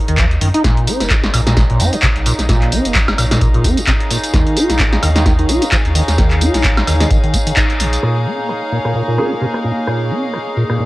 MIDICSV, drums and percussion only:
0, 0, Header, 1, 2, 480
1, 0, Start_track
1, 0, Key_signature, -5, "minor"
1, 0, Tempo, 461538
1, 670, Time_signature, 4, 2, 24, 8
1, 11288, End_track
2, 0, Start_track
2, 0, Title_t, "Drums"
2, 84, Note_on_c, 9, 42, 45
2, 185, Note_on_c, 9, 39, 117
2, 188, Note_off_c, 9, 42, 0
2, 189, Note_on_c, 9, 42, 52
2, 190, Note_on_c, 9, 36, 116
2, 289, Note_off_c, 9, 39, 0
2, 293, Note_off_c, 9, 42, 0
2, 294, Note_off_c, 9, 36, 0
2, 324, Note_on_c, 9, 42, 24
2, 428, Note_off_c, 9, 42, 0
2, 429, Note_on_c, 9, 46, 102
2, 533, Note_off_c, 9, 46, 0
2, 564, Note_on_c, 9, 42, 49
2, 668, Note_off_c, 9, 42, 0
2, 669, Note_on_c, 9, 38, 66
2, 669, Note_on_c, 9, 42, 52
2, 670, Note_on_c, 9, 36, 119
2, 672, Note_on_c, 9, 54, 36
2, 773, Note_off_c, 9, 38, 0
2, 773, Note_off_c, 9, 42, 0
2, 774, Note_off_c, 9, 36, 0
2, 776, Note_off_c, 9, 54, 0
2, 804, Note_on_c, 9, 42, 25
2, 908, Note_off_c, 9, 42, 0
2, 909, Note_on_c, 9, 46, 106
2, 912, Note_on_c, 9, 54, 81
2, 1013, Note_off_c, 9, 46, 0
2, 1016, Note_off_c, 9, 54, 0
2, 1045, Note_on_c, 9, 38, 37
2, 1045, Note_on_c, 9, 42, 47
2, 1048, Note_on_c, 9, 54, 42
2, 1146, Note_on_c, 9, 39, 110
2, 1149, Note_off_c, 9, 38, 0
2, 1149, Note_off_c, 9, 42, 0
2, 1149, Note_on_c, 9, 42, 52
2, 1150, Note_on_c, 9, 36, 107
2, 1152, Note_off_c, 9, 54, 0
2, 1153, Note_on_c, 9, 54, 33
2, 1250, Note_off_c, 9, 39, 0
2, 1253, Note_off_c, 9, 42, 0
2, 1254, Note_off_c, 9, 36, 0
2, 1257, Note_off_c, 9, 54, 0
2, 1285, Note_on_c, 9, 38, 61
2, 1285, Note_on_c, 9, 42, 23
2, 1389, Note_off_c, 9, 38, 0
2, 1389, Note_off_c, 9, 42, 0
2, 1390, Note_on_c, 9, 46, 104
2, 1390, Note_on_c, 9, 76, 67
2, 1393, Note_on_c, 9, 54, 78
2, 1494, Note_off_c, 9, 46, 0
2, 1494, Note_off_c, 9, 76, 0
2, 1497, Note_off_c, 9, 54, 0
2, 1525, Note_on_c, 9, 38, 64
2, 1525, Note_on_c, 9, 42, 48
2, 1528, Note_on_c, 9, 54, 48
2, 1629, Note_off_c, 9, 38, 0
2, 1629, Note_off_c, 9, 42, 0
2, 1630, Note_on_c, 9, 36, 117
2, 1630, Note_on_c, 9, 38, 66
2, 1630, Note_on_c, 9, 42, 52
2, 1632, Note_off_c, 9, 54, 0
2, 1633, Note_on_c, 9, 54, 33
2, 1734, Note_off_c, 9, 36, 0
2, 1734, Note_off_c, 9, 38, 0
2, 1734, Note_off_c, 9, 42, 0
2, 1737, Note_off_c, 9, 54, 0
2, 1765, Note_on_c, 9, 42, 24
2, 1869, Note_off_c, 9, 42, 0
2, 1869, Note_on_c, 9, 46, 104
2, 1872, Note_on_c, 9, 54, 82
2, 1973, Note_off_c, 9, 46, 0
2, 1976, Note_off_c, 9, 54, 0
2, 2005, Note_on_c, 9, 42, 46
2, 2008, Note_on_c, 9, 54, 44
2, 2106, Note_on_c, 9, 39, 114
2, 2109, Note_off_c, 9, 42, 0
2, 2109, Note_on_c, 9, 42, 49
2, 2110, Note_on_c, 9, 36, 114
2, 2112, Note_off_c, 9, 54, 0
2, 2113, Note_on_c, 9, 54, 36
2, 2210, Note_off_c, 9, 39, 0
2, 2213, Note_off_c, 9, 42, 0
2, 2214, Note_off_c, 9, 36, 0
2, 2217, Note_off_c, 9, 54, 0
2, 2244, Note_on_c, 9, 42, 26
2, 2348, Note_off_c, 9, 42, 0
2, 2349, Note_on_c, 9, 46, 99
2, 2353, Note_on_c, 9, 54, 77
2, 2453, Note_off_c, 9, 46, 0
2, 2457, Note_off_c, 9, 54, 0
2, 2485, Note_on_c, 9, 38, 37
2, 2485, Note_on_c, 9, 42, 51
2, 2488, Note_on_c, 9, 54, 44
2, 2589, Note_off_c, 9, 38, 0
2, 2589, Note_off_c, 9, 42, 0
2, 2589, Note_on_c, 9, 38, 66
2, 2589, Note_on_c, 9, 42, 56
2, 2590, Note_on_c, 9, 36, 113
2, 2592, Note_off_c, 9, 54, 0
2, 2593, Note_on_c, 9, 54, 37
2, 2693, Note_off_c, 9, 38, 0
2, 2693, Note_off_c, 9, 42, 0
2, 2694, Note_off_c, 9, 36, 0
2, 2697, Note_off_c, 9, 54, 0
2, 2721, Note_on_c, 9, 39, 33
2, 2725, Note_on_c, 9, 42, 27
2, 2825, Note_off_c, 9, 39, 0
2, 2829, Note_off_c, 9, 42, 0
2, 2830, Note_on_c, 9, 46, 99
2, 2833, Note_on_c, 9, 54, 85
2, 2934, Note_off_c, 9, 46, 0
2, 2937, Note_off_c, 9, 54, 0
2, 2965, Note_on_c, 9, 42, 50
2, 2968, Note_on_c, 9, 54, 44
2, 3066, Note_on_c, 9, 39, 113
2, 3069, Note_off_c, 9, 42, 0
2, 3070, Note_on_c, 9, 36, 110
2, 3070, Note_on_c, 9, 42, 51
2, 3072, Note_off_c, 9, 54, 0
2, 3073, Note_on_c, 9, 54, 35
2, 3170, Note_off_c, 9, 39, 0
2, 3174, Note_off_c, 9, 36, 0
2, 3174, Note_off_c, 9, 42, 0
2, 3177, Note_off_c, 9, 54, 0
2, 3205, Note_on_c, 9, 38, 61
2, 3205, Note_on_c, 9, 42, 26
2, 3205, Note_on_c, 9, 76, 85
2, 3309, Note_off_c, 9, 38, 0
2, 3309, Note_off_c, 9, 42, 0
2, 3309, Note_off_c, 9, 76, 0
2, 3310, Note_on_c, 9, 46, 100
2, 3310, Note_on_c, 9, 76, 69
2, 3313, Note_on_c, 9, 54, 82
2, 3414, Note_off_c, 9, 46, 0
2, 3414, Note_off_c, 9, 76, 0
2, 3417, Note_off_c, 9, 54, 0
2, 3445, Note_on_c, 9, 38, 64
2, 3445, Note_on_c, 9, 42, 55
2, 3448, Note_on_c, 9, 54, 49
2, 3549, Note_off_c, 9, 38, 0
2, 3549, Note_off_c, 9, 42, 0
2, 3550, Note_on_c, 9, 36, 107
2, 3550, Note_on_c, 9, 42, 53
2, 3552, Note_off_c, 9, 54, 0
2, 3553, Note_on_c, 9, 54, 33
2, 3654, Note_off_c, 9, 36, 0
2, 3654, Note_off_c, 9, 42, 0
2, 3657, Note_off_c, 9, 54, 0
2, 3685, Note_on_c, 9, 42, 24
2, 3789, Note_off_c, 9, 42, 0
2, 3790, Note_on_c, 9, 36, 59
2, 3790, Note_on_c, 9, 46, 102
2, 3793, Note_on_c, 9, 54, 79
2, 3894, Note_off_c, 9, 36, 0
2, 3894, Note_off_c, 9, 46, 0
2, 3897, Note_off_c, 9, 54, 0
2, 3925, Note_on_c, 9, 42, 51
2, 3928, Note_on_c, 9, 54, 44
2, 4026, Note_on_c, 9, 39, 118
2, 4029, Note_off_c, 9, 42, 0
2, 4030, Note_on_c, 9, 36, 107
2, 4030, Note_on_c, 9, 42, 50
2, 4032, Note_off_c, 9, 54, 0
2, 4130, Note_off_c, 9, 39, 0
2, 4134, Note_off_c, 9, 36, 0
2, 4134, Note_off_c, 9, 42, 0
2, 4165, Note_on_c, 9, 42, 28
2, 4269, Note_off_c, 9, 42, 0
2, 4270, Note_on_c, 9, 46, 101
2, 4273, Note_on_c, 9, 54, 82
2, 4374, Note_off_c, 9, 46, 0
2, 4377, Note_off_c, 9, 54, 0
2, 4405, Note_on_c, 9, 42, 51
2, 4408, Note_on_c, 9, 54, 47
2, 4509, Note_off_c, 9, 42, 0
2, 4510, Note_on_c, 9, 36, 111
2, 4510, Note_on_c, 9, 38, 60
2, 4510, Note_on_c, 9, 42, 57
2, 4512, Note_off_c, 9, 54, 0
2, 4513, Note_on_c, 9, 54, 39
2, 4614, Note_off_c, 9, 36, 0
2, 4614, Note_off_c, 9, 38, 0
2, 4614, Note_off_c, 9, 42, 0
2, 4617, Note_off_c, 9, 54, 0
2, 4645, Note_on_c, 9, 42, 27
2, 4749, Note_off_c, 9, 42, 0
2, 4750, Note_on_c, 9, 46, 102
2, 4753, Note_on_c, 9, 54, 82
2, 4854, Note_off_c, 9, 46, 0
2, 4857, Note_off_c, 9, 54, 0
2, 4885, Note_on_c, 9, 38, 35
2, 4885, Note_on_c, 9, 42, 54
2, 4889, Note_on_c, 9, 54, 45
2, 4986, Note_on_c, 9, 39, 115
2, 4989, Note_off_c, 9, 38, 0
2, 4989, Note_off_c, 9, 42, 0
2, 4990, Note_on_c, 9, 36, 107
2, 4990, Note_on_c, 9, 42, 55
2, 4993, Note_off_c, 9, 54, 0
2, 4993, Note_on_c, 9, 54, 35
2, 5090, Note_off_c, 9, 39, 0
2, 5094, Note_off_c, 9, 36, 0
2, 5094, Note_off_c, 9, 42, 0
2, 5097, Note_off_c, 9, 54, 0
2, 5125, Note_on_c, 9, 38, 58
2, 5125, Note_on_c, 9, 42, 27
2, 5229, Note_off_c, 9, 38, 0
2, 5229, Note_off_c, 9, 42, 0
2, 5230, Note_on_c, 9, 46, 99
2, 5230, Note_on_c, 9, 76, 68
2, 5233, Note_on_c, 9, 54, 78
2, 5334, Note_off_c, 9, 46, 0
2, 5334, Note_off_c, 9, 76, 0
2, 5337, Note_off_c, 9, 54, 0
2, 5365, Note_on_c, 9, 38, 60
2, 5365, Note_on_c, 9, 42, 56
2, 5368, Note_on_c, 9, 54, 48
2, 5469, Note_off_c, 9, 38, 0
2, 5469, Note_off_c, 9, 42, 0
2, 5470, Note_on_c, 9, 36, 110
2, 5470, Note_on_c, 9, 38, 59
2, 5470, Note_on_c, 9, 42, 52
2, 5472, Note_off_c, 9, 54, 0
2, 5473, Note_on_c, 9, 54, 35
2, 5574, Note_off_c, 9, 36, 0
2, 5574, Note_off_c, 9, 38, 0
2, 5574, Note_off_c, 9, 42, 0
2, 5577, Note_off_c, 9, 54, 0
2, 5605, Note_on_c, 9, 42, 27
2, 5709, Note_off_c, 9, 42, 0
2, 5710, Note_on_c, 9, 46, 95
2, 5713, Note_on_c, 9, 54, 80
2, 5814, Note_off_c, 9, 46, 0
2, 5817, Note_off_c, 9, 54, 0
2, 5845, Note_on_c, 9, 42, 54
2, 5848, Note_on_c, 9, 54, 45
2, 5946, Note_on_c, 9, 39, 118
2, 5949, Note_off_c, 9, 42, 0
2, 5950, Note_on_c, 9, 36, 107
2, 5950, Note_on_c, 9, 42, 58
2, 5952, Note_off_c, 9, 54, 0
2, 5953, Note_on_c, 9, 54, 36
2, 6050, Note_off_c, 9, 39, 0
2, 6054, Note_off_c, 9, 36, 0
2, 6054, Note_off_c, 9, 42, 0
2, 6057, Note_off_c, 9, 54, 0
2, 6085, Note_on_c, 9, 42, 28
2, 6189, Note_off_c, 9, 42, 0
2, 6189, Note_on_c, 9, 46, 103
2, 6193, Note_on_c, 9, 54, 84
2, 6293, Note_off_c, 9, 46, 0
2, 6297, Note_off_c, 9, 54, 0
2, 6325, Note_on_c, 9, 38, 35
2, 6325, Note_on_c, 9, 42, 52
2, 6328, Note_on_c, 9, 54, 46
2, 6429, Note_off_c, 9, 38, 0
2, 6429, Note_off_c, 9, 42, 0
2, 6429, Note_on_c, 9, 38, 61
2, 6429, Note_on_c, 9, 42, 58
2, 6430, Note_on_c, 9, 36, 112
2, 6432, Note_off_c, 9, 54, 0
2, 6433, Note_on_c, 9, 54, 35
2, 6533, Note_off_c, 9, 38, 0
2, 6533, Note_off_c, 9, 42, 0
2, 6534, Note_off_c, 9, 36, 0
2, 6537, Note_off_c, 9, 54, 0
2, 6561, Note_on_c, 9, 39, 37
2, 6565, Note_on_c, 9, 42, 27
2, 6665, Note_off_c, 9, 39, 0
2, 6669, Note_off_c, 9, 42, 0
2, 6670, Note_on_c, 9, 46, 99
2, 6673, Note_on_c, 9, 54, 84
2, 6774, Note_off_c, 9, 46, 0
2, 6777, Note_off_c, 9, 54, 0
2, 6805, Note_on_c, 9, 38, 35
2, 6805, Note_on_c, 9, 42, 55
2, 6808, Note_on_c, 9, 54, 45
2, 6906, Note_on_c, 9, 39, 115
2, 6909, Note_off_c, 9, 38, 0
2, 6909, Note_off_c, 9, 42, 0
2, 6910, Note_on_c, 9, 36, 107
2, 6910, Note_on_c, 9, 42, 58
2, 6912, Note_off_c, 9, 54, 0
2, 6913, Note_on_c, 9, 54, 36
2, 7010, Note_off_c, 9, 39, 0
2, 7014, Note_off_c, 9, 36, 0
2, 7014, Note_off_c, 9, 42, 0
2, 7017, Note_off_c, 9, 54, 0
2, 7045, Note_on_c, 9, 38, 55
2, 7045, Note_on_c, 9, 42, 27
2, 7045, Note_on_c, 9, 76, 76
2, 7149, Note_off_c, 9, 38, 0
2, 7149, Note_off_c, 9, 42, 0
2, 7149, Note_off_c, 9, 76, 0
2, 7149, Note_on_c, 9, 46, 99
2, 7149, Note_on_c, 9, 76, 63
2, 7152, Note_on_c, 9, 54, 81
2, 7253, Note_off_c, 9, 46, 0
2, 7253, Note_off_c, 9, 76, 0
2, 7256, Note_off_c, 9, 54, 0
2, 7284, Note_on_c, 9, 38, 57
2, 7284, Note_on_c, 9, 42, 60
2, 7287, Note_on_c, 9, 54, 48
2, 7388, Note_off_c, 9, 38, 0
2, 7388, Note_off_c, 9, 42, 0
2, 7389, Note_on_c, 9, 42, 54
2, 7390, Note_on_c, 9, 36, 119
2, 7391, Note_off_c, 9, 54, 0
2, 7392, Note_on_c, 9, 54, 35
2, 7493, Note_off_c, 9, 42, 0
2, 7494, Note_off_c, 9, 36, 0
2, 7496, Note_off_c, 9, 54, 0
2, 7524, Note_on_c, 9, 42, 27
2, 7628, Note_off_c, 9, 42, 0
2, 7629, Note_on_c, 9, 36, 60
2, 7629, Note_on_c, 9, 46, 105
2, 7633, Note_on_c, 9, 54, 80
2, 7733, Note_off_c, 9, 36, 0
2, 7733, Note_off_c, 9, 46, 0
2, 7737, Note_off_c, 9, 54, 0
2, 7765, Note_on_c, 9, 42, 53
2, 7768, Note_on_c, 9, 54, 46
2, 7866, Note_on_c, 9, 39, 121
2, 7869, Note_off_c, 9, 42, 0
2, 7869, Note_on_c, 9, 36, 109
2, 7869, Note_on_c, 9, 42, 59
2, 7872, Note_off_c, 9, 54, 0
2, 7873, Note_on_c, 9, 54, 36
2, 7970, Note_off_c, 9, 39, 0
2, 7973, Note_off_c, 9, 36, 0
2, 7973, Note_off_c, 9, 42, 0
2, 7977, Note_off_c, 9, 54, 0
2, 8005, Note_on_c, 9, 42, 29
2, 8109, Note_off_c, 9, 42, 0
2, 8109, Note_on_c, 9, 46, 109
2, 8112, Note_on_c, 9, 54, 82
2, 8213, Note_off_c, 9, 46, 0
2, 8216, Note_off_c, 9, 54, 0
2, 8245, Note_on_c, 9, 42, 55
2, 8248, Note_on_c, 9, 54, 46
2, 8349, Note_off_c, 9, 42, 0
2, 8349, Note_on_c, 9, 37, 62
2, 8352, Note_off_c, 9, 54, 0
2, 8453, Note_off_c, 9, 37, 0
2, 8593, Note_on_c, 9, 54, 71
2, 8697, Note_off_c, 9, 54, 0
2, 8728, Note_on_c, 9, 54, 41
2, 8829, Note_on_c, 9, 37, 37
2, 8832, Note_off_c, 9, 54, 0
2, 8933, Note_off_c, 9, 37, 0
2, 9073, Note_on_c, 9, 54, 73
2, 9177, Note_off_c, 9, 54, 0
2, 9205, Note_on_c, 9, 37, 57
2, 9309, Note_off_c, 9, 37, 0
2, 9550, Note_on_c, 9, 37, 38
2, 9553, Note_on_c, 9, 54, 74
2, 9654, Note_off_c, 9, 37, 0
2, 9657, Note_off_c, 9, 54, 0
2, 9688, Note_on_c, 9, 54, 42
2, 9792, Note_off_c, 9, 54, 0
2, 9793, Note_on_c, 9, 54, 34
2, 9897, Note_off_c, 9, 54, 0
2, 9925, Note_on_c, 9, 37, 59
2, 10029, Note_off_c, 9, 37, 0
2, 10033, Note_on_c, 9, 54, 75
2, 10137, Note_off_c, 9, 54, 0
2, 10168, Note_on_c, 9, 54, 41
2, 10270, Note_on_c, 9, 37, 62
2, 10272, Note_off_c, 9, 54, 0
2, 10273, Note_on_c, 9, 54, 32
2, 10374, Note_off_c, 9, 37, 0
2, 10377, Note_off_c, 9, 54, 0
2, 10513, Note_on_c, 9, 54, 75
2, 10617, Note_off_c, 9, 54, 0
2, 10649, Note_on_c, 9, 54, 39
2, 10750, Note_on_c, 9, 37, 39
2, 10753, Note_off_c, 9, 54, 0
2, 10754, Note_on_c, 9, 54, 30
2, 10854, Note_off_c, 9, 37, 0
2, 10858, Note_off_c, 9, 54, 0
2, 10993, Note_on_c, 9, 54, 67
2, 11097, Note_off_c, 9, 54, 0
2, 11126, Note_on_c, 9, 37, 58
2, 11129, Note_on_c, 9, 54, 41
2, 11230, Note_off_c, 9, 37, 0
2, 11233, Note_off_c, 9, 54, 0
2, 11233, Note_on_c, 9, 54, 29
2, 11288, Note_off_c, 9, 54, 0
2, 11288, End_track
0, 0, End_of_file